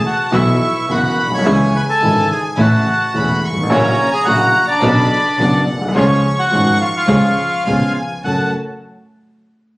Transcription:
0.00 0.33 A5 medium
0.06 0.31 F#4 medium
0.06 0.35 F#5 medium
0.31 0.56 B1 medium
0.31 0.56 B2 medium
0.31 0.56 E3 medium
0.31 0.56 F#3 medium
0.31 0.56 B3 medium
0.31 0.56 E4 medium
0.31 0.86 E4 medium
0.31 0.56 F#4 medium
0.31 0.87 E5 medium
0.31 0.89 C#6 medium
0.88 1.13 F#1 medium
0.88 1.13 F#2 soft
0.88 1.13 E3 soft
0.88 1.12 F#3 soft
0.88 1.13 F#3 soft
0.88 1.12 B3 soft
0.88 1.13 B3 soft
0.88 1.12 E4 soft
0.88 1.13 F#4 soft
0.88 1.30 F#4 medium
0.88 1.46 B5 medium
0.94 1.31 F#5 medium
1.17 1.45 B1 medium
1.25 1.32 A#1 soft
1.31 1.38 B1 medium
1.31 1.72 C#5 medium
1.35 1.46 C2 medium
1.35 1.77 C#6 medium
1.45 1.69 C#2 medium
1.45 1.69 C#3 medium
1.45 1.69 E3 medium
1.45 1.69 G#3 medium
1.45 1.70 G#3 medium
1.45 1.69 C#4 medium
1.45 1.69 E4 medium
1.45 2.58 G#5 loud
1.76 1.82 B4 medium
1.76 1.82 B5 medium
1.89 2.28 A4 medium
1.89 2.28 A5 medium
2.02 2.25 G#1 medium
2.02 2.26 G#1 medium
2.02 2.26 G#2 medium
2.02 2.26 C#3 soft
2.02 2.26 E3 soft
2.02 2.26 G#3 soft
2.02 2.25 C#4 soft
2.02 2.26 E4 medium
2.32 2.44 G#4 medium
2.32 2.45 G#5 medium
2.57 2.81 A1 loud
2.57 2.82 A1 medium
2.57 2.82 A2 medium
2.57 2.81 C#3 medium
2.57 2.82 E3 medium
2.57 2.81 A3 medium
2.57 2.82 A3 medium
2.57 2.81 C#4 medium
2.57 2.82 E4 medium
2.57 3.40 F#4 medium
2.57 3.40 F#5 medium
2.57 3.15 A5 medium
3.13 3.38 E1 medium
3.13 3.38 E2 medium
3.13 3.38 C#3 soft
3.13 3.38 E3 soft
3.13 3.38 A3 soft
3.13 3.38 C#4 soft
3.13 3.38 E4 medium
3.13 3.43 B5 medium
3.43 3.70 G#1 medium
3.43 3.71 C#6 loud
3.50 3.57 G1 soft
3.56 3.63 G#1 medium
3.63 3.70 A1 medium
3.69 3.94 A#1 medium
3.69 3.94 A#2 medium
3.69 3.94 C#3 medium
3.69 3.93 F#3 medium
3.69 3.94 A#3 medium
3.69 4.10 C#4 medium
3.69 3.94 E4 medium
3.69 3.94 F#4 medium
3.69 4.10 C#5 medium
3.69 4.84 A#5 loud
4.11 4.26 G#4 medium
4.11 4.26 G#5 loud
4.25 4.50 A#1 medium
4.25 4.50 A#2 medium
4.25 4.50 C#3 medium
4.25 4.50 F#3 medium
4.25 4.50 A#3 medium
4.25 4.50 E4 soft
4.25 4.50 E4 medium
4.25 4.50 F#4 medium
4.25 4.66 F#4 medium
4.25 4.65 F#5 loud
4.67 5.64 D4 medium
4.67 5.63 D5 medium
4.82 5.06 B1 loud
4.82 5.06 B1 medium
4.82 5.06 B2 medium
4.82 5.06 C#3 medium
4.82 5.06 F#3 medium
4.82 5.06 B3 medium
4.82 5.06 C#4 medium
4.82 5.06 D4 medium
4.82 5.39 B5 loud
5.38 5.63 F#1 medium
5.38 5.63 F#2 medium
5.38 5.63 C#3 soft
5.38 5.63 F#3 soft
5.38 5.62 B3 soft
5.38 5.63 B3 soft
5.38 5.62 C#4 soft
5.38 5.62 D4 soft
5.38 5.63 D4 medium
5.38 5.96 F#5 medium
5.67 5.95 B1 medium
5.75 5.82 A#1 medium
5.81 5.88 B1 medium
5.88 5.95 C2 medium
5.94 6.19 C#2 medium
5.94 6.19 C#3 medium
5.94 6.19 F3 medium
5.94 6.19 G#3 medium
5.94 6.19 C#4 medium
5.94 6.20 C#4 medium
5.94 6.35 C#4 medium
5.94 6.19 F4 medium
5.94 6.20 G#4 medium
5.94 6.40 C#5 medium
5.94 7.63 C#6 loud
6.39 6.78 F#4 medium
6.39 6.78 F#5 loud
6.50 6.76 G#1 medium
6.50 6.76 G#2 medium
6.50 6.76 F3 medium
6.50 6.75 G#3 medium
6.50 6.76 G#3 medium
6.50 6.75 C#4 soft
6.50 6.76 C#4 soft
6.50 6.75 F4 medium
6.50 6.76 G#4 medium
6.81 6.88 F4 medium
6.81 6.88 F5 medium
6.96 7.93 F4 medium
6.96 7.93 F5 loud
7.07 7.33 C#2 medium
7.07 7.33 C#2 loud
7.07 7.33 C#3 medium
7.07 7.33 F3 medium
7.07 7.33 G#3 medium
7.07 7.32 C#4 medium
7.07 7.33 C#4 medium
7.07 7.33 F4 medium
7.07 7.33 G#4 medium
7.66 7.91 C#2 medium
7.66 7.91 C#3 medium
7.66 7.91 F3 medium
7.66 7.91 B3 medium
7.66 7.92 B3 soft
7.66 7.91 C#4 soft
7.66 7.91 F4 medium
7.66 7.92 G#4 medium
7.66 8.25 G#5 medium
8.24 8.48 F#1 medium
8.24 8.49 F#2 soft
8.24 8.48 A3 soft
8.24 8.48 C#4 soft
8.24 8.49 C#4 soft
8.24 8.48 F#4 soft
8.24 8.49 F#4 soft
8.24 8.49 A4 medium
8.24 8.51 F#5 medium
8.24 8.51 A5 medium

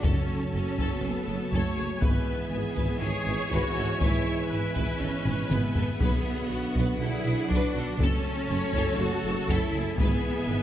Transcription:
0.00 0.74 F#2 medium
0.00 2.03 C#3 soft
0.00 1.98 F#3 medium
0.00 0.52 C#4 medium
0.00 1.98 F#4 medium
0.00 0.26 A4 soft
0.00 0.52 A4 soft
0.00 1.98 C#5 soft
0.00 1.98 A5 soft
0.00 taiko medium
0.04 0.14 F#1 medium
0.04 0.12 F#1 medium
0.04 1.99 A3 soft
0.53 0.61 F#1 soft
0.53 0.63 F#1 soft
0.53 1.02 C#4 medium
0.53 1.51 A4 medium
0.53 0.63 A4 soft
0.78 0.86 F#1 medium
0.78 0.88 F#1 medium
0.78 1.02 A4 medium
0.78 taiko medium
1.02 1.10 F#1 soft
1.02 1.13 F#1 soft
1.02 1.52 B3 medium
1.02 1.13 G#4 soft
1.28 1.36 F#1 soft
1.28 1.38 F#1 soft
1.28 1.37 A4 soft
1.52 1.62 F#1 medium
1.52 1.61 F#1 medium
1.52 2.02 A3 medium
1.52 1.76 A4 medium
1.52 2.02 C#5 medium
1.52 taiko medium
1.77 1.85 F#1 soft
1.77 1.88 F#1 soft
1.77 1.85 G#4 soft
2.02 2.11 G#1 medium
2.02 2.13 G#1 medium
2.02 5.85 E3 soft
2.02 5.85 G#3 soft
2.02 3.00 B3 medium
2.02 5.83 B3 soft
2.02 2.52 B4 medium
2.02 2.26 B4 soft
2.02 5.83 B4 soft
2.02 6.97 E5 soft
2.02 5.96 G#5 soft
2.02 taiko medium
2.51 2.62 G#1 soft
2.51 2.60 G#1 soft
2.51 3.00 G#4 medium
2.51 2.60 B4 soft
2.76 2.86 G#1 medium
2.76 2.85 G#1 medium
2.76 3.00 B4 soft
2.76 taiko medium
3.01 3.12 G#1 soft
3.01 3.10 G#1 soft
3.01 3.52 G#4 medium
3.01 3.09 A4 soft
3.01 4.48 C#5 medium
3.25 3.36 G#1 soft
3.25 3.36 B4 soft
3.51 3.61 G#1 medium
3.51 3.60 G#1 medium
3.51 4.01 F#4 medium
3.51 3.75 B4 medium
3.51 taiko medium
3.75 3.86 G#1 soft
3.75 3.85 G#1 soft
3.75 3.86 A4 soft
4.00 4.10 G#1 medium
4.00 4.50 E4 medium
4.00 4.25 B4 medium
4.00 taiko medium
4.50 4.60 G#1 soft
4.50 4.59 G#1 soft
4.50 5.00 E4 medium
4.50 4.60 B4 soft
4.50 6.01 B4 medium
4.75 4.85 G#1 medium
4.75 4.99 B4 medium
4.75 taiko medium
5.00 5.10 G#1 soft
5.00 5.51 C#4 medium
5.00 5.10 A4 soft
5.24 5.34 G#1 soft
5.24 5.34 B4 soft
5.24 taiko low-mid medium
5.49 5.59 G#1 medium
5.49 5.58 G#1 medium
5.49 5.99 B3 medium
5.49 5.74 B4 medium
5.49 taiko mid medium
5.74 5.85 G#1 soft
5.74 5.84 G#1 soft
5.74 5.85 A4 soft
5.74 taiko low medium
6.00 6.10 B1 medium
6.00 6.09 B1 medium
6.00 7.97 D3 medium
6.00 9.95 F#3 medium
6.00 6.98 B3 medium
6.00 7.95 D4 medium
6.00 6.50 G#4 medium
6.00 7.95 B4 medium
6.00 6.24 B4 medium
6.00 7.95 F#5 medium
6.00 taiko medium
6.50 6.58 B1 soft
6.50 6.60 B1 soft
6.50 7.00 F#4 soft
6.50 6.59 B4 soft
6.75 6.85 B1 medium
6.75 6.83 B1 medium
6.75 7.00 B4 medium
6.75 taiko medium
7.00 7.08 B1 soft
7.00 7.10 B1 soft
7.00 7.49 E4 medium
7.00 7.49 G#4 medium
7.00 7.10 A4 soft
7.00 8.01 D5 soft
7.25 7.33 B1 soft
7.25 7.35 B1 medium
7.25 7.36 B4 medium
7.50 7.58 B1 medium
7.50 7.60 B1 medium
7.50 8.00 D4 medium
7.50 8.00 F#4 medium
7.50 taiko medium
7.54 7.75 B4 medium
7.74 7.82 B1 medium
7.74 7.85 B1 soft
7.74 7.86 A4 medium
7.99 8.07 F#1 medium
7.99 8.10 F#1 medium
7.99 9.96 C#3 medium
7.99 9.99 A3 medium
7.99 9.00 C#4 medium
7.99 8.49 A4 medium
7.99 10.00 A4 medium
7.99 8.25 A4 medium
7.99 10.00 C#5 medium
7.99 9.95 A5 medium
7.99 taiko medium
8.50 8.58 F#1 medium
8.50 8.60 F#1 soft
8.50 8.61 A4 soft
8.50 8.99 C#5 medium
8.74 8.85 F#1 medium
8.74 8.83 F#1 medium
8.74 8.99 A4 medium
8.74 taiko medium
8.99 9.07 F#1 medium
8.99 9.09 F#1 soft
8.99 9.49 F#4 medium
8.99 9.99 A4 medium
9.04 9.12 G#4 soft
9.24 9.32 F#1 medium
9.24 9.34 F#1 medium
9.24 9.35 A4 medium
9.48 9.56 F#1 medium
9.48 9.59 F#1 medium
9.48 9.99 E4 medium
9.48 9.73 A4 medium
9.48 taiko medium
9.73 9.81 F#1 medium
9.73 9.84 F#1 medium
9.73 9.83 G#4 soft
9.98 10.06 G#1 medium
9.98 10.09 G#1 medium
9.98 10.63 E3 medium
9.98 10.63 G#3 medium
9.98 10.63 B3 medium
9.98 10.47 G#4 medium
9.98 10.63 G#4 medium
9.98 10.22 B4 medium
9.98 10.63 E5 medium
9.98 10.63 G#5 medium
9.98 taiko medium
10.48 10.56 G#1 medium
10.48 10.59 G#1 soft
10.48 10.57 B4 soft
10.48 10.63 B4 medium

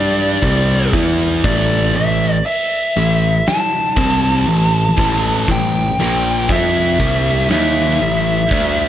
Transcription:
0.00 0.39 G2 medium
0.00 0.41 G3 medium
0.00 0.41 D4 loud
0.00 0.41 G4 loud
0.00 0.91 D5 medium
0.42 0.90 C2 medium
0.42 0.92 C3 medium
0.42 0.92 G3 medium
0.42 0.92 C4 medium
0.42 kick loud
0.42 open hi-hat medium
0.93 1.41 E2 medium
0.93 1.42 E3 medium
0.93 1.42 B3 medium
0.93 1.43 E4 medium
0.93 kick loud
1.44 1.91 A1 medium
1.44 1.93 A2 medium
1.44 1.94 E3 medium
1.44 1.94 A3 medium
1.44 1.92 D5 loud
1.44 kick loud
1.44 open hi-hat medium
1.95 2.42 A1 medium
1.95 2.36 A2 medium
1.95 2.36 E3 medium
1.95 2.42 E5 medium
2.45 3.50 E5 medium
2.45 open hi-hat medium
2.96 3.43 A1 medium
2.96 3.36 A2 medium
2.96 3.37 E3 medium
3.46 5.51 A5 medium
3.46 snare loud
3.46 open hi-hat medium
3.97 4.44 C2 medium
3.97 4.46 C3 loud
3.97 4.46 G3 medium
3.97 4.46 C4 loud
3.97 kick medium
4.47 4.95 A1 medium
4.47 4.87 A2 medium
4.47 4.88 E3 medium
4.47 open hi-hat soft
4.97 5.45 A1 medium
4.97 5.46 A2 medium
4.97 5.46 E3 medium
4.97 5.47 A3 loud
4.97 kick loud
5.48 5.95 A1 medium
5.48 5.89 A2 medium
5.48 5.89 E3 medium
5.48 6.54 G5 loud
5.48 kick medium
5.48 open hi-hat soft
5.99 6.46 A#1 medium
5.99 6.48 A#2 medium
5.99 6.48 F3 medium
5.99 6.49 A#3 loud
6.49 6.96 F2 medium
6.49 6.98 F3 medium
6.49 6.98 C4 medium
6.49 6.99 F4 loud
6.49 7.48 E5 medium
6.49 kick loud
6.49 open hi-hat medium
6.99 7.47 C2 medium
6.99 7.49 C3 medium
6.99 7.49 G3 loud
6.99 7.49 C4 medium
6.99 kick loud
7.49 7.98 D#2 medium
7.49 7.99 D#3 medium
7.49 7.99 A#3 loud
7.49 7.99 D#4 loud
7.49 8.88 E5 medium
7.49 snare loud
7.49 open hi-hat medium
8.00 8.48 A1 medium
8.00 8.41 A2 medium
8.00 8.41 E3 medium
8.50 8.88 D2 loud
8.50 8.88 D3 medium
8.50 8.88 A3 loud
8.50 8.88 D4 loud
8.50 kick loud
8.50 open hi-hat medium

